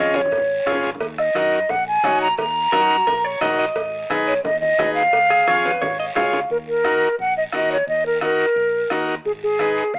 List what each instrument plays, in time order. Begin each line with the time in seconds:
Already playing: fingered electric bass F2, transistor combo organ C#4 F4 G#4
0.00 flute D#5
0.14 flute C#5, high conga, short guiro
0.25 high conga
0.31 fingered electric bass G#1, bombo low, cowbell, long guiro
0.37 low conga
0.66 fingered electric bass G#1, transistor combo organ C#4 F4 G#4, bombo low, bombo rim, short guiro
0.72 low conga
0.83 low conga, short guiro
0.95 low conga
1.01 fingered electric bass D#2, bombo low, cowbell, long guiro
1.18 flute D#5, bombo rim
1.35 fingered electric bass F#2, transistor combo organ D#4 F#4 A#4, bombo rim, high conga, short guiro
1.52 short guiro
1.69 fingered electric bass A#1, flute F#5, bombo low, cowbell, low conga, long guiro
1.88 flute G#5
2.03 fingered electric bass A#1, transistor combo organ D#4 F#4 C#5, bombo rim, high conga, low timbale, short guiro
2.21 flute A#5, short guiro
2.37 fingered electric bass D#2, flute A#5, bombo low, cowbell, low conga, long guiro
2.72 fingered electric bass F#2, transistor combo organ D#4 F#4 A#4, clean electric guitar A#4, bombo rim, high conga, short guiro
2.81 clean electric guitar F#4
2.89 short guiro
3.07 fingered electric bass A#1, clean electric guitar A#4, bombo low, cowbell, low conga, long guiro
3.24 clean electric guitar C#5
3.41 fingered electric bass A#1, transistor combo organ D#4 F#4 A#4, clean electric guitar D#5, bombo rim, high conga, low timbale, short guiro
3.59 clean electric guitar D#5, short guiro
3.76 fingered electric bass G#1, bombo low, cowbell, long guiro
4.10 fingered electric bass B1, transistor combo organ D#4 G#4 B4, bombo rim, high conga, short guiro
4.27 flute C#5, short guiro
4.44 fingered electric bass D#2, flute D#5, bombo low, cowbell, low conga, long guiro
4.61 flute D#5, high conga
4.79 fingered electric bass D#2, transistor combo organ D#4 G#4 B4, bombo rim, high conga, low timbale, short guiro
4.94 flute F5, short guiro
5.13 fingered electric bass C#2, bombo low, cowbell, long guiro
5.30 clean electric guitar G#4, bombo rim
5.47 fingered electric bass F2, transistor combo organ F4 G#4 C#5, clean electric guitar C#5, bombo rim, high conga, short guiro
5.65 clean electric guitar B4, high conga, short guiro
5.82 fingered electric bass G#1, clean electric guitar C#5, bombo low, cowbell, high conga, long guiro
6.00 clean electric guitar D#5
6.15 fingered electric bass C#2, transistor combo organ F4 G#4 C#5, clean electric guitar F5, bombo rim, low conga, low timbale, short guiro
6.33 low conga, short guiro
6.50 fingered electric bass D#2, flute A#4, bombo low, long guiro
6.68 flute A#4
6.84 transistor combo organ D#4 F#4 A#4, bombo rim, high conga, short guiro
7.02 short guiro
7.19 fingered electric bass A#1, flute F#5, bombo low, long guiro
7.37 flute D#5
7.53 fingered electric bass D#2, transistor combo organ D#4 F#4 A#4, flute D#5, bombo rim, high conga, short guiro
7.71 flute C#5, short guiro
7.87 fingered electric bass D#2, flute D#5, bombo low, long guiro
8.06 flute A#4
8.21 transistor combo organ D#4 F#4 A#4, flute A#4, bombo rim, high conga, short guiro
8.39 short guiro
8.56 fingered electric bass A#1, bombo low, long guiro
8.90 fingered electric bass D#2, transistor combo organ D#4 F#4 A#4, bombo low, bombo rim, high conga, short guiro
9.08 short guiro
9.25 fingered electric bass G#1, flute G#4, bombo low, long guiro
9.43 flute G#4
9.59 transistor combo organ D#4 G#4 B4, bombo rim, high conga, short guiro
9.77 short guiro
9.94 fingered electric bass D#2, flute F5, bombo low, long guiro